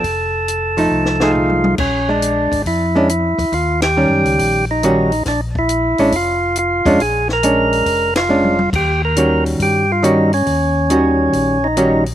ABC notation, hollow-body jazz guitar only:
X:1
M:4/4
L:1/8
Q:"Swing" 1/4=138
K:Eb
V:1 name="Hollow-body jazz guitar"
z3 [F,=A,E]2 [F,A,E^G]3 | z [A,D]3 z [A,^CD] z2 | z2 [E,G,_D]3 z [E,G,D^F] z | z3 [A,^CD] z3 [A,CD] |
z2 [A,^CD]3 z [A,CD] z | z2 [E,G,_D^F]3 z [E,G,DF] z | z2 [E,G,_D^F]3 z [E,G,DF] z |]